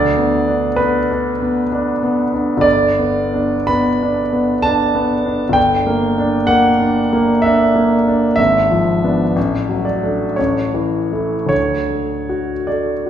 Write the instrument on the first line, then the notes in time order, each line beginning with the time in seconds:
grand piano
Already playing: D2 D5
0.17 B3
0.48 D4
0.76 B3 B4
1.11 D4
1.42 B3
1.72 D4
2.03 B3
2.34 D4
2.57 G1 D5
2.99 B3
3.34 D4
3.67 B3 B5
4.02 D4
4.33 B3
4.62 D4 A5
4.95 B3
5.26 D4
5.49 G1 G5
5.87 A#3
6.18 D4
6.47 A#3 F#5
6.80 D4
7.13 A#3
7.42 D4 E5
7.76 A#3
8.07 D4
8.36 G#1 E5
8.71 F3
9.04 B3 D4
9.36 A1
9.69 F#3
9.85 D5
10.03 A3 D4
10.36 A1 C#5
10.74 E3
11.13 A3 E4
11.46 D2 C#5
11.90 A3
12.29 F#4
12.67 A3 D5
13.06 F#4